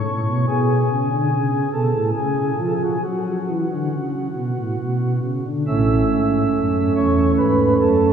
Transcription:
Already playing: C#5
0.07 A2
0.27 B2
0.48 B2 G#4
0.90 C#3
1.10 D3
1.31 C#3
1.73 B2 A4
1.94 A2
2.16 C#3 G#4
2.58 F3
2.66 A4
2.74 G#4
2.84 F#4
2.93 G#4
3.03 F#3 F#4
3.48 E3
3.71 D3
3.92 C#3
4.34 B2
4.57 A2
4.79 B2
5.23 C#3
5.46 D3
5.67 A1 A2 A3 C#4 E5
6.11 G#2
6.55 F#2
6.96 E2 C#5
7.38 G#2 B4
7.80 F#2 A4

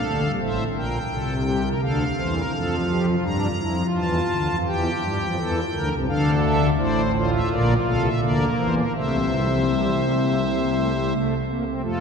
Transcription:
Already playing: A4 F5
0.05 D2 D3 A3
0.23 G3
0.41 A1 A2 C5 E5
0.76 A#1 A#2 A#4 G5
1.11 C2 C3 A4
1.47 G4
1.64 A#4
1.81 D2 D3 A4 F5
2.19 E2 E3 C5
2.35 A#4
2.53 F2 F3 A4
2.90 G4
3.08 F4
3.24 G2 G3 D4 A#5
3.60 F2 F3 E4
3.78 F4
3.96 E2 E3 A5
4.32 D2 D3
4.49 F2 F3
4.66 E2 E3 G4 G5
5.02 G2 G3
5.21 F2 F3
5.37 E2 E3 A4
5.72 D2 D3 A#4
5.90 C2 C3
6.08 D2 D3 D4 A4 F5
6.44 E5
6.78 A1 A2 E4 C5 D5
7.14 F4 C5
7.33 E5
7.51 A#1 A#2 A#4 D5
7.86 C2 C3 A4 F5
8.04 E5
8.22 D2 D3 A#3 A#4 D5
8.58 E2 E3 C5
8.77 A#4
8.95 C2 C3 A3 C5 E5
9.31 G3
9.49 F3
9.68 G3
10.03 A3
10.21 A#3
10.39 C4
10.58 A#3
10.76 A3
10.93 G3
11.11 A3
11.48 A#3
11.65 C4
11.82 F2 F3 A3 F4 A4

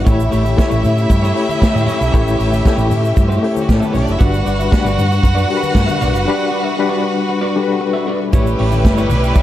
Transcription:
0.04 A1 A3 C#4 E4 G4 C#5, kick, closed hi-hat, muted conga, shaker
0.08 E5
0.20 muted conga, shaker
0.31 A1 A3 E4 G4 C#5, open hi-hat, shaker
0.44 A3 E4 G4 E5, high conga, shaker
0.57 A3 E4 G4 C#5, kick, snare, closed hi-hat, muted conga, shaker
0.70 A1 A3 E4 G4 C#5, shaker
0.83 A2, muted clean electric guitar stroke, open hi-hat, high conga, low conga, shaker
0.97 muted clean electric guitar stroke, shaker
1.10 G2, muted clean electric guitar stroke, kick, closed hi-hat, shaker
1.22 A3 E4 G4 C#5, muted conga, shaker
1.35 A3 E4 G4 C#5, muted clean electric guitar stroke, open hi-hat
1.49 muted clean electric guitar stroke, high conga, shaker
1.61 muted clean electric guitar stroke, muted fingered electric bass stroke, kick, snare, closed hi-hat, shaker
1.74 A2 A3 E4 G4 E5, high conga, shaker
1.85 A3 E4 G4 C#5, open hi-hat, low conga, shaker
2.00 B1, muted clean electric guitar stroke, shaker
2.12 A1 A3 E4 G4 B4 C#5, kick, closed hi-hat, shaker
2.22 C#5
2.27 muted conga, shaker
2.37 A1 A3 E4 G4 C#5, open hi-hat, shaker
2.51 A3 E4 G4 E5, high conga, shaker
2.63 A3 E4, muted clean electric guitar stroke, kick, snare, closed hi-hat, shaker
2.67 G4 E5
2.76 A1 A3 E4 G4 C#5, muted conga, shaker
2.89 A2, muted clean electric guitar stroke, open hi-hat, high conga, low conga, shaker
3.03 muted clean electric guitar stroke, shaker
3.14 G2, muted clean electric guitar stroke, kick, closed hi-hat, shaker
3.28 A3 E4 G4 C#5, muted conga, shaker
3.41 A3 E4 G4 C5, muted clean electric guitar stroke, open hi-hat
3.51 C#5, muted clean electric guitar stroke
3.56 high conga, shaker
3.61 F#4
3.67 A2 G3 G4, muted clean electric guitar stroke, kick, snare, closed hi-hat, shaker
3.78 A3 E4 G4 A4 E5, shaker
3.83 B3 B4, high conga
3.93 B1 A3 C#4 E4 G4 C#5, open hi-hat, low conga, shaker
3.97 snare
4.03 D4 D5
4.07 F#1, muted clean electric guitar stroke, shaker
4.12 E4 E5
4.19 G1 G3 D4 F#4 B4 D5 F#5, kick, closed hi-hat, shaker
4.33 muted conga, shaker
4.45 G1 D4 F#4 B4 D5, open hi-hat, shaker
4.59 D4 F#4 B4 E5, high conga, shaker
4.71 G3 D4 F#4 B4, muted clean electric guitar stroke, kick, snare, closed hi-hat, muted conga, shaker
4.85 G1 D4 F#4 B4 D5, shaker
4.98 G2, muted clean electric guitar stroke, open hi-hat, high conga, low conga, shaker
5.12 muted clean electric guitar stroke, shaker
5.23 F#2, muted clean electric guitar stroke, kick, closed hi-hat, shaker
5.35 D4 F#4 B4 D5, muted conga, shaker
5.48 G3 D4 F#4 A#4, muted clean electric guitar stroke, open hi-hat
5.57 B4
5.61 muted clean electric guitar stroke, high conga, shaker
5.74 G2, muted clean electric guitar stroke, kick, snare, closed hi-hat, muted conga, shaker
5.86 D4 F#4 B4 E5, muted conga, high conga, shaker
6.00 B1 D4 F#4 B4 D5, snare, open hi-hat, low conga, shaker
6.13 F#1, muted clean electric guitar stroke, shaker
6.25 G3 D4 F#4 B4 D5
6.29 B4
6.51 D4 F#4 B4 D5
6.64 D4 F#4 B4 E5
6.77 G3 D4 F#4 B4, muted clean electric guitar stroke
6.89 D4 F#4 B4 D5
7.03 muted clean electric guitar stroke
7.15 muted clean electric guitar stroke
7.29 muted clean electric guitar stroke
7.41 D4 F#4 B4 D5
7.55 G3 D4 F#4 A4, muted clean electric guitar stroke
7.63 B4
7.68 muted clean electric guitar stroke
7.80 muted clean electric guitar stroke
7.93 D4 F#4 B4 E5
8.07 D4 F#4 B4 D5
8.21 muted clean electric guitar stroke
8.32 A1 G3 A3 C#4 E4 G4 B4 C#5, kick, closed hi-hat, low conga, shaker
8.47 muted conga, shaker
8.58 A1 A3 E4 G4 C#5, open hi-hat
8.71 A3 E4 G4 E5, high conga, shaker
8.85 G1, muted clean electric guitar stroke, kick, snare, closed hi-hat, shaker
8.97 A3 E4 G4 C#5, muted conga, shaker
9.10 B1, muted clean electric guitar stroke, open hi-hat, high conga, low conga, shaker
9.23 muted clean electric guitar stroke, shaker
9.35 muted clean electric guitar stroke, kick, closed hi-hat, muted conga, high conga, shaker

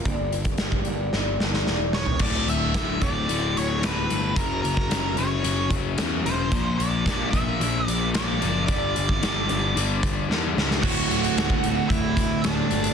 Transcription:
0.05 G1 G2 D3 G3 A#3 D4 G4, kick, closed hi-hat
0.31 G3 A#3 D4 G4, closed hi-hat
0.45 kick, closed hi-hat
0.58 G1 G3 A#3 D4, snare, closed hi-hat
0.62 G4
0.72 kick
0.85 G1 G2 D3 G3 A#3 D4 G4, closed hi-hat
1.13 G1 G3 A#3 D4 G4, snare
1.40 G1 G2 D3 G3 A#3 D4 G4, snare
1.54 snare
1.66 E1 G3 A#3 D4 G4, snare
1.93 G3 A#3 D4 G4 C#5, snare
2.06 floor tom
2.19 D1 D2 A2 D3 D5, kick, crash
2.47 D1 D2 A2 E5, closed hi-hat
2.74 D1 D2 A2 D3, kick, snare, closed hi-hat
3.02 D1 D2 A2 D3 D5, kick, closed hi-hat
3.29 D1 D2 A2 D3, closed hi-hat
3.57 D1 D2 A2 C#5, closed hi-hat
3.82 D1 D2 A2 D3 B4, snare, closed hi-hat
4.10 G1 D2 A2 D3, closed hi-hat
4.36 F#1 F#2 C#3 F#3 A#4, kick, closed hi-hat
4.62 F#1 F#2 C#3 A#4, closed hi-hat
4.77 kick, snare
4.90 F#1 F#2 C#3 F#3, snare, closed hi-hat
5.17 F#1 F#2 C#3 F#3 C#5, closed hi-hat
5.44 F#1 F#2 C#3 F#3, closed hi-hat
5.70 F#1 F#2 C#3, kick, closed hi-hat
5.97 E2 F#2 C#3 F#3, snare, closed hi-hat
6.25 E1 F#2 C#3 F#3 C5, closed hi-hat
6.51 A#1 A#2 F3 A#3, kick, closed hi-hat
6.78 A#1 A#2 D5, closed hi-hat
7.06 A#1 A#2 F3 A#3, kick, snare, closed hi-hat
7.31 A#1 A#2 F3 A#3 E5, kick, closed hi-hat
7.60 A#1 A#2 F3 A#3, closed hi-hat
7.87 A#1 A#2 F3 D5, closed hi-hat
8.14 A#1 A#2 F3 A#3 D5, snare, closed hi-hat
8.42 F#1 A#2 F3 A#3, closed hi-hat
8.66 G1 G2 D3 G3 D5, kick, closed hi-hat
8.96 G1 G2, closed hi-hat
9.09 kick, snare
9.22 G1 G2 D3 G3, snare, closed hi-hat
9.49 G1 G2 D3 G3, closed hi-hat
9.76 G1 G2 D3 G3, closed hi-hat
10.03 G1 G2 D3, kick, closed hi-hat
10.29 E2 G2 D3 G3, snare
10.56 C#2 G2 D3 G3, snare
10.71 snare
10.81 D1 D2 A2 D3 F#4 F#5, kick, crash
11.09 D1, closed hi-hat
11.24 closed hi-hat
11.36 D1, snare, closed hi-hat
11.50 kick
11.63 D1, closed hi-hat
11.89 D1 E4 E5, kick, closed hi-hat
12.17 kick, closed hi-hat
12.44 D1 D4 D5, snare, closed hi-hat
12.71 G1, closed hi-hat
12.84 closed hi-hat

